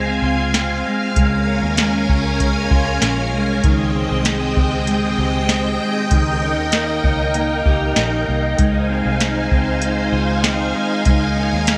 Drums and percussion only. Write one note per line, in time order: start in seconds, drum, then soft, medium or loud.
0.54 snare loud
0.54 closed hi-hat medium
1.16 kick medium
1.16 closed hi-hat medium
1.77 snare loud
1.77 closed hi-hat medium
2.09 kick medium
2.40 kick medium
2.40 closed hi-hat medium
2.71 kick medium
3.02 snare loud
3.02 closed hi-hat medium
3.64 kick loud
3.64 closed hi-hat medium
4.25 snare loud
4.25 closed hi-hat medium
4.57 kick medium
4.87 closed hi-hat medium
5.49 snare loud
5.49 closed hi-hat medium
6.11 kick medium
6.11 closed hi-hat medium
6.72 snare loud
6.72 closed hi-hat medium
7.04 kick medium
7.34 closed hi-hat medium
7.66 kick medium
7.96 snare loud
7.96 closed hi-hat medium
8.58 kick loud
8.58 closed hi-hat medium
9.20 snare loud
9.20 closed hi-hat medium
9.51 kick medium
9.82 closed hi-hat medium
10.44 snare loud
10.44 closed hi-hat medium
11.05 kick loud
11.05 closed hi-hat medium
11.67 snare loud
11.67 closed hi-hat medium